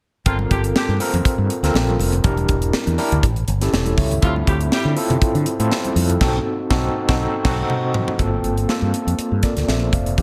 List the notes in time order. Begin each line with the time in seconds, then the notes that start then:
0.26 G1 D3 C4 F4 A4 A#4, kick, closed hi-hat
0.39 high conga
0.51 G1 D3 C4 G4, kick, closed hi-hat, muted conga
0.64 closed hi-hat
0.76 D3 C4 G4, snare
0.88 G2
1.00 C4 F4 A4 A#4, open hi-hat, muted conga
1.13 F2, closed hi-hat, low conga
1.25 kick, closed hi-hat
1.38 G2
1.50 closed hi-hat, muted conga
1.63 D2 C4 F4 A4 A#4, snare, closed hi-hat
1.74 A#1, snare, muted conga
1.87 high conga
1.99 F1, open hi-hat, muted conga, high conga
2.12 closed hi-hat, low conga
2.23 E1 D4 E4 G4 A#4, kick, closed hi-hat, muted conga
2.37 closed hi-hat, high conga
2.48 E1, kick, closed hi-hat, muted conga
2.62 closed hi-hat
2.73 snare
2.87 E2, closed hi-hat
2.98 D4 E4 G4 A#4, open hi-hat, muted conga
3.12 D2, closed hi-hat, low conga
3.23 A1, kick, closed hi-hat, muted conga
3.36 closed hi-hat
3.48 G1, closed hi-hat, muted conga
3.61 C#4 E4 G4 A4, snare, closed hi-hat
3.73 E1 A4 C#5, snare, muted conga
3.86 closed hi-hat, high conga
3.97 C#2 C#5 E5, kick, open hi-hat, muted conga, high conga
4.11 closed hi-hat, low conga
4.21 D2 C3 A3 C4 E4 F4 A4, kick, closed hi-hat
4.36 high conga
4.47 D2 G3 E4 G4, kick, closed hi-hat
4.61 closed hi-hat
4.72 G3 E4 G4, muted fretless electric bass stroke, snare
4.85 D3
4.96 C4 E4 F4 A4, open hi-hat
5.10 C3, closed hi-hat, low conga
5.21 muted fretless electric bass stroke, kick, closed hi-hat, muted conga
5.35 D3, closed hi-hat
5.46 closed hi-hat, muted conga
5.59 A2 C4 E4 F4 A4, closed hi-hat
5.72 snare
5.84 closed hi-hat, high conga
5.96 F2, open hi-hat, muted conga, high conga
6.10 closed hi-hat, low conga
6.21 B1 C4 D#4 F#4 A4, kick, snare, crash
6.70 B1 C4 D#4 F#4 A4, kick, snare
7.08 B1 C4 D#4 F#4 A4, kick, snare
7.44 B1 C4 D#4 F#4 A4, kick, snare, crash
7.70 mid tom
7.94 floor tom
8.08 floor tom
8.19 G1 A#3 C4 F4 A4, kick, closed hi-hat
8.43 G1, closed hi-hat
8.58 closed hi-hat
8.68 A#3 C4 F4 A4, snare
8.82 G2
8.94 closed hi-hat
9.07 F2, closed hi-hat
9.18 muted fretless electric bass stroke, closed hi-hat
9.32 G2
9.43 A#4 D5, kick, snare, closed hi-hat
9.57 D2, snare, closed hi-hat
9.68 A#1 C5 E5, snare
9.93 F1 D5 F5, kick, closed hi-hat
10.06 closed hi-hat
10.17 E2 A#3 D4 E4 G4, kick, closed hi-hat